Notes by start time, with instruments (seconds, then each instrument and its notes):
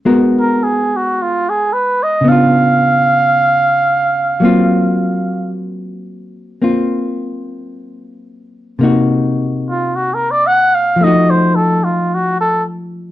0.05 hollow-body jazz guitar G#3 B3 F#4 A#4
0.40 muted trumpet A#4
0.64 muted trumpet G#4
0.96 muted trumpet F#4
1.22 muted trumpet F4
1.50 muted trumpet G#4
1.73 muted trumpet B4
2.03 muted trumpet D#5
2.21 hollow-body jazz guitar C#3 B3
2.28 hollow-body jazz guitar D4, muted trumpet F5
2.32 hollow-body jazz guitar F4
4.40 hollow-body jazz guitar F#3 A#3 C4
4.44 hollow-body jazz guitar F4
6.62 hollow-body jazz guitar A#3 C4 F4
8.79 hollow-body jazz guitar C3 A#3
8.83 hollow-body jazz guitar D#4 F#4
9.69 muted trumpet F4
9.96 muted trumpet F#4
10.14 muted trumpet A#4
10.31 muted trumpet D5
10.47 muted trumpet F#5
10.75 muted trumpet F5
10.96 hollow-body jazz guitar F3
11.01 hollow-body jazz guitar A3 D#4, muted trumpet D#5
11.07 hollow-body jazz guitar F#4
11.30 muted trumpet C5
11.56 muted trumpet A4
11.84 muted trumpet F4
12.15 muted trumpet F#4
12.41 muted trumpet A4